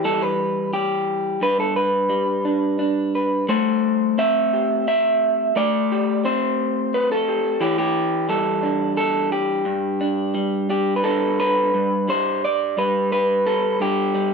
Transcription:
Already playing: E3
0.04 G3 A4
0.22 B4
0.73 G4
1.41 G2 B4
1.60 A4
1.76 B4
2.10 G3
2.45 D4
2.79 D4
3.15 B4
3.49 A3 C5
4.18 C4 E5
4.53 G4
4.88 E5
5.56 A3 D5
5.92 G4
6.25 C4 C5
6.94 B4
7.12 A4
7.28 G4
7.60 E3 G4
7.78 G4
8.29 G3 A4
8.63 D4
8.97 A4
9.32 G4
9.65 G2
10.01 D4
10.35 G3
10.69 D4 G4
10.96 B4
11.04 D4 A4
11.40 B4
11.74 G2
12.08 G3 C5
12.45 D5
12.78 G3 B4
13.12 B4
13.46 A4
13.80 G2 G4
14.14 G3

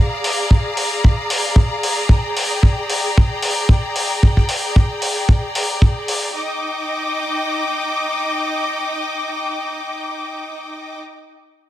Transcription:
Already playing: G#4 D5 F5 A#5
0.24 open hi-hat
0.51 kick
0.77 open hi-hat
1.04 kick
1.30 open hi-hat
1.56 kick
1.83 open hi-hat
2.09 G5, kick
2.37 open hi-hat
2.63 kick
2.90 open hi-hat
3.18 kick
3.42 open hi-hat
3.69 kick
3.96 open hi-hat
4.23 kick
4.37 kick
4.49 open hi-hat
4.76 kick
5.02 open hi-hat
5.29 kick
5.55 open hi-hat
5.82 kick
6.08 open hi-hat
6.34 D#4 D#5 G5 D6

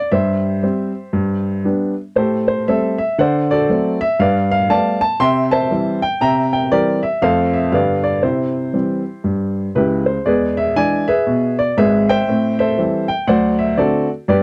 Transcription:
Already playing: D5
0.12 G2 G4 C5 E5
0.63 G3 C4
1.13 G2
1.64 G3 B3 D4
2.16 A2 G4 A4 C5
2.48 C5
2.68 G3 A3 C4 A4 C5 E5
2.98 E5
3.18 D3 C5 D5 F#5
3.51 F#4 A4 D5
3.70 F#3 A3 C4
4.01 E5
4.19 G2 B4 D5 F5
4.51 F5
4.69 G3 A3 B3 D5 F5 A5
5.01 A5
5.20 C3 E5 G5 C6
5.51 C5 E5 A5
5.71 E3 G3 C4
6.02 G5
6.21 C3 E5 G5 A#5
6.53 G5
6.72 E3 G3 C4 G4 A#4 D5
7.03 E5
7.22 F2 F3 A3 C4 A4 C5 F5
7.53 E5
7.72 G2 D3 G3 B3 B4 D5 F5
8.04 D5
8.22 C3 E4 G4 C5
8.73 E3 G3 C4
9.24 G2
9.75 C#2 C#3 E4 G4 B4
10.06 C5
10.25 E2 G#3 G#4 B4 D5
10.57 E5
10.76 E3 G#3 D4 D5 E5 G#5
11.08 G#4 B4 E5
11.27 B2
11.59 D5
11.77 G#1 G#2 G#4 B4 E5
12.09 C5 E5 G5
12.28 A2 C4
12.59 A4 C5 E5
12.78 E3 G3 C4
13.08 G5
13.27 D2 F#3 C5 D5 F#5
13.59 E5
13.77 D3 A3 C4 F#4 A4 D5
14.28 G2 B3 G4 B4 D5

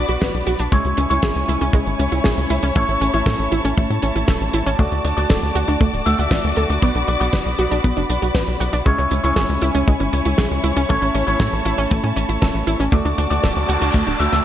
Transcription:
Already playing: B3 D4 F#4 D5 B5 D6
0.08 B1 F#4, closed hi-hat
0.21 A1 B4, kick, snare, closed hi-hat
0.34 B1, closed hi-hat
0.47 B1 F#4, closed hi-hat
0.59 B1 D4, closed hi-hat
0.72 C#2 G#3 C#4 E4 C#5 G#5 C#6, kick, closed hi-hat
0.85 C#2, closed hi-hat
0.97 C#2 C#4, closed hi-hat
1.10 C#2 G#3 C#4 E4 C#5, closed hi-hat
1.22 G#1 G#4, kick, snare, closed hi-hat
1.35 C#2, closed hi-hat
1.49 C#2 E4, closed hi-hat
1.61 C#2 C#4, closed hi-hat
1.73 C#2 G#3, kick, closed hi-hat
1.86 G#1, closed hi-hat
1.99 C#2 C#4, closed hi-hat
2.12 C#2 E4, closed hi-hat
2.24 B1 G#4, kick, snare, closed hi-hat
2.37 C#2, closed hi-hat
2.50 C#2 E4, closed hi-hat
2.63 C#2 C#4, closed hi-hat
2.75 A1 A3 C#4 E4 C#5 A5, kick, closed hi-hat
2.88 A1, closed hi-hat
3.01 A1 C#4, closed hi-hat
3.13 A1 A3 C#4 E4 C#5, closed hi-hat
3.26 A2 A4, kick, snare, closed hi-hat
3.39 A1, closed hi-hat
3.52 A1 E4, closed hi-hat
3.65 A1 C#4, closed hi-hat
3.77 A1 A3, kick, closed hi-hat
3.90 A2, closed hi-hat
4.02 A1 C#4, closed hi-hat
4.16 A1 E4, closed hi-hat
4.28 E1 A4, kick, snare, closed hi-hat
4.41 A1, closed hi-hat
4.53 A1 E4, closed hi-hat
4.66 A1 C#4, closed hi-hat
4.79 D2 A3 D4 F#4 D5 D6, kick, closed hi-hat
4.92 D2, closed hi-hat
5.05 D2 D4, closed hi-hat
5.17 D2 A3 D4 F#4 D5, closed hi-hat
5.30 D1 A4, kick, snare, closed hi-hat
5.42 D2, closed hi-hat
5.55 D2 F#4, closed hi-hat
5.68 D2 D4, closed hi-hat
5.81 D2 A3, kick, closed hi-hat
5.94 D1, closed hi-hat
6.06 D2 A3 D4 F#4 E5, closed hi-hat
6.18 D2 A3 D4 F#4 E5 F#5, closed hi-hat
6.31 A1 D5, kick, snare, closed hi-hat
6.44 D2, closed hi-hat
6.56 D2 A4, closed hi-hat
6.70 D2 D4, closed hi-hat
6.82 B1 B3 D4 F#4 D5 B5, kick, closed hi-hat
6.95 B1 D4, closed hi-hat
7.08 B1 D4, closed hi-hat
7.20 B1 B3 D4 F#4 D5, closed hi-hat
7.33 F#1 B4, kick, snare, closed hi-hat
7.46 B1, closed hi-hat
7.58 B1 F#4, closed hi-hat
7.71 B1 D4, closed hi-hat
7.84 B1 B3, kick, closed hi-hat
7.97 F#1 D4, closed hi-hat
8.10 B1 D4, closed hi-hat
8.22 B1 F#4, closed hi-hat
8.34 A1 B4, kick, snare, closed hi-hat
8.48 B1, closed hi-hat
8.60 B1 F#4, closed hi-hat
8.73 B1 D4, closed hi-hat
8.85 C#2 G#3 C#4 E4 C#5 G#5 C#6, kick, closed hi-hat
8.98 C#2 C#4, closed hi-hat
9.11 C#2 C#4, closed hi-hat
9.23 C#2 G#3 C#4 E4 C#5, closed hi-hat
9.36 G#1 G#4, kick, snare, closed hi-hat
9.49 C#2, closed hi-hat
9.61 C#2 E4, closed hi-hat
9.75 C#2 C#4, closed hi-hat
9.87 C#2 G#3, kick, closed hi-hat
10.00 G#1 C#4, closed hi-hat
10.13 C#2 C#4, closed hi-hat
10.25 C#2 E4, closed hi-hat
10.38 B1 G#4, kick, snare, closed hi-hat
10.51 C#2, closed hi-hat
10.64 C#2 E4, closed hi-hat
10.76 C#2 C#4, closed hi-hat
10.89 A1 A3 C#4 E4 C#5 A5, kick, closed hi-hat
11.02 A1 C#4, closed hi-hat
11.15 A1 C#4, closed hi-hat
11.27 A1 A3 C#4 E4 C#5, closed hi-hat
11.40 A2 A4, kick, snare, closed hi-hat
11.53 A1, closed hi-hat
11.65 A1 E4, closed hi-hat
11.78 A1 C#4, closed hi-hat
11.91 A1 A3, kick, closed hi-hat
12.04 A2 C#4, closed hi-hat
12.16 A1 C#4, closed hi-hat
12.29 A1 E4, closed hi-hat
12.42 E1 A4, kick, snare, closed hi-hat
12.54 A1, closed hi-hat
12.67 A1 E4, closed hi-hat
12.80 A1 C#4, closed hi-hat
12.92 D2 A3 D4 F#4 D5 A5 D6, kick, closed hi-hat, noise sweep
13.05 D2 D4, closed hi-hat
13.18 D2 D4, closed hi-hat
13.30 D2 A3 D4 F#4 D5, closed hi-hat
13.43 D1 A4, kick, snare, closed hi-hat
13.56 D2, closed hi-hat
13.69 D2 F#4, closed hi-hat
13.82 D2 D4, closed hi-hat
13.94 D2 A3, kick, closed hi-hat
14.07 D1 D4, closed hi-hat
14.19 D2 A3 D4 F#4 E5, closed hi-hat
14.32 D2 A3 D4 F#4 E5, snare, closed hi-hat

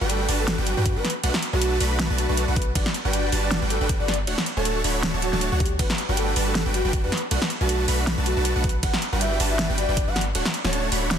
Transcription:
0.01 G1 G3 D4 F#4 B4 G5
0.10 A4, closed hi-hat
0.29 G1 G3 D4 F#4 B4 A5, open hi-hat
0.39 A4
0.48 snare, closed hi-hat
0.58 G1 G3 D4 F#4 B4 G5
0.67 F#4, closed hi-hat
0.77 G2 G3 D4 F#4 B4 G5
0.86 kick, closed hi-hat
0.96 G1 G3 D4 F#4 B4 F#5
1.05 snare, closed hi-hat
1.10 closed hi-hat
1.24 B1 A3 D4 F#4 B4 F#5, closed hi-hat, ride
1.34 snare
1.43 closed hi-hat
1.53 B1 A3 D4 F#4 B4 A5
1.62 closed hi-hat
1.80 B1 A3 D4 F#4 B4 B5, open hi-hat
1.99 snare, closed hi-hat
2.10 B1 A3 D4 F#4 B4 A5
2.18 F#4, closed hi-hat
2.29 B1 A3 D4 F#4 B4 A5
2.37 closed hi-hat
2.48 B1 A3 D4 F#4 B4 F#5
2.56 B4, kick, closed hi-hat
2.62 closed hi-hat
2.75 G1 G3 D4 F#4 B4 D5 F#5, kick, closed hi-hat, ride
2.86 snare
2.94 closed hi-hat
3.05 G1 G3 D4 F#4 B4 G5
3.13 D5, closed hi-hat
3.32 G1 G3 D4 F#4 B4 A5, open hi-hat
3.43 D5
3.51 snare, closed hi-hat
3.62 G1 G3 D4 F#4 B4 G5
3.70 A4, closed hi-hat
3.81 G1 G3 D4 F#4 B4 G5
3.89 kick, closed hi-hat
4.00 G1 G3 D4 F#4 B4 D5 F#5
4.08 snare, closed hi-hat
4.14 closed hi-hat
4.27 D1 A3 D4 F#4 C#5 F#5, closed hi-hat, ride
4.38 snare
4.46 closed hi-hat
4.57 D1 A3 D4 F#4 A4 C#5 A5
4.65 closed hi-hat
4.84 D1 A3 D4 F#4 C#5 B5, open hi-hat
5.03 snare, closed hi-hat
5.14 D1 A3 D4 F#4 C#5 A5
5.22 F#4, closed hi-hat
5.33 D1 A3 D4 F#4 C#5 A5, snare
5.41 closed hi-hat
5.52 D2 A3 D4 F#4 C#5 F#5
5.60 G4, kick, closed hi-hat
5.66 closed hi-hat
5.79 G1 G3 D4 F#4 B4 F#5, kick, closed hi-hat, ride
5.90 snare
5.98 closed hi-hat
6.09 G1 G3 D4 F#4 B4 G5
6.17 A4, closed hi-hat
6.36 G1 G3 D4 F#4 B4 A5, open hi-hat
6.47 A4
6.55 snare, closed hi-hat
6.66 G1 G3 D4 F#4 B4 G5
6.74 F#4, closed hi-hat
6.85 G1 G3 D4 F#4 B4 G5
6.93 kick, closed hi-hat
7.04 G2 G3 D4 F#4 B4 F#5
7.12 snare, closed hi-hat
7.17 closed hi-hat
7.31 B1 A3 D4 F#4 B4 F#5, closed hi-hat, ride
7.42 snare
7.50 closed hi-hat
7.61 B1 A3 D4 F#4 B4 A5
7.69 closed hi-hat
7.88 B1 A3 D4 F#4 B4 B5, open hi-hat
8.07 snare, closed hi-hat
8.18 B1 A3 D4 F#4 B4 A5
8.26 F#4, closed hi-hat
8.37 B1 A3 D4 F#4 B4 A5
8.45 closed hi-hat
8.56 B1 A3 D4 F#4 B4 F#5
8.64 B4, kick, closed hi-hat
8.69 closed hi-hat
8.83 G1 G3 D4 F#4 B4 F#5, kick, closed hi-hat, ride
8.94 snare
9.02 closed hi-hat
9.13 G1 G3 D4 F#4 B4 G5
9.21 E5, closed hi-hat
9.40 G1 G3 D4 F#4 B4 A5, open hi-hat
9.50 E5
9.59 snare, closed hi-hat
9.70 G1 G3 D4 F#4 B4 G5
9.78 D5, closed hi-hat
9.89 G1 G3 D4 F#4 B4 G5
9.97 kick, closed hi-hat
10.08 G1 G3 D4 F#4 B4 F#5
10.16 snare, closed hi-hat
10.21 closed hi-hat
10.35 D1 A3 D4 F#4 C#5 F#5, closed hi-hat, ride
10.45 snare
10.54 closed hi-hat
10.64 D1 A3 D4 F#4 C#5 A5, snare
10.73 closed hi-hat
10.92 D1 A3 D4 F#4 C#5 B5, open hi-hat
11.11 snare, closed hi-hat

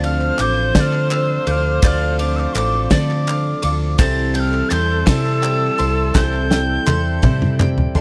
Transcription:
Already playing: D2 D3 F3 A3 C4 D4 F4 A4 C5 D5
0.04 F3 C4 D4 A4 C5 F5 F6, ride
0.21 clap
0.39 A1 F3 A3 C4 D4 F4 A4 C5 D6 G6, clap, ride
0.75 D3 F3 A3 C4 D4 F4 A4 D5 G6, kick, snare, ride
0.80 F6
0.93 clap
1.10 F3 C4 D4 A4 C5 F5 E6, clap, ride
1.47 D2 F3 C4 D4 F4 A4 C5 D6 G6, ride
1.51 F6
1.82 D2 D3 F3 A3 C4 D4 F4 A4 C5 D5 G6, kick, clap, ride
1.87 F6
2.19 F3 C4 D4 A4 C5 F5 D6, ride
2.36 D6 E6, clap
2.53 A1 F3 A3 C4 D4 F4 A4 C5 C6 D6, clap, ride
2.90 D3 F3 A3 C4 D4 F4 A4 C5 D5 D6, kick, snare, ride
3.11 clap
3.27 F3 C4 D4 A4 C5 F5, clap, ride
3.62 D2 F3 C4 D4 F4 A4 D5 D6, ride
3.98 C2 C3 E3 G3 C4 E4 A4 C5 A6, kick, clap, ride
4.34 G3 C4 E4 A4 C5 G5 G6, ride
4.40 F6
4.54 clap
4.69 E2 G3 C4 E4 A4 C5 C6 G6 A6, clap, ride
5.06 C3 E3 G3 C4 E4 A4 C5 D5 E6, kick, snare, ride
5.26 clap
5.42 G3 C4 E4 A4 C5 G5, clap, ride
5.78 C2 G3 C4 E4 A4 C5 C6, ride
6.14 C2 C3 E3 G3 C4 E4 A4 C5 G6, kick, snare, clap
6.33 clap
6.50 G3 C4 E4 A4 C5 G5, snare
6.86 E2 G3 C4 E4 A4 D5 C6, clap, high tom
7.22 C3 E3 G3 C4 E4 A4 C5, kick, mid tom
7.42 mid tom
7.59 G3 C4 E4 A4 D5 G5, clap, mid tom
7.78 floor tom
7.95 C2 G3 C4 E4 A4 D5 C6, floor tom

